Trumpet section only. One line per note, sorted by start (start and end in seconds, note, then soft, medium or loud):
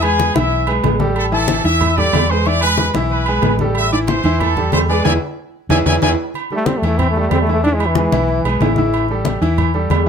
0.03 0.36 G#4 loud
0.03 0.35 G#5 loud
0.36 0.71 E5 medium
0.36 0.71 E6 medium
1.17 1.24 A4 medium
1.17 1.25 A5 medium
1.32 1.63 A4 loud
1.32 1.63 A5 medium
1.65 1.95 E5 loud
1.65 1.96 E6 medium
1.96 2.29 D5 loud
1.96 2.30 D6 medium
2.29 2.45 C5 loud
2.29 2.46 C6 medium
2.46 2.62 D5 loud
2.46 2.63 D6 medium
2.61 2.92 B4 loud
2.61 2.93 B5 medium
3.11 3.56 B4 medium
3.11 3.57 B5 medium
3.75 3.90 E5 loud
3.75 3.91 E6 medium
3.91 3.99 D5 loud
3.91 3.99 D6 medium
4.07 4.37 C5 loud
4.07 4.38 C6 medium
4.40 4.72 A4 medium
4.40 4.73 A5 medium
4.72 4.79 C5 loud
4.72 4.81 C6 medium
4.88 5.03 D5 medium
4.88 5.04 D6 medium
5.05 5.13 D5 loud
5.05 5.13 E5 medium
5.05 5.12 G#5 loud
5.70 5.78 D5 medium
5.70 5.78 E5 medium
5.70 5.78 G#5 medium
5.86 5.94 D5 medium
5.86 5.94 E5 loud
5.86 5.94 G#5 loud
6.02 6.10 D5 loud
6.02 6.10 E5 medium
6.02 6.10 G#5 loud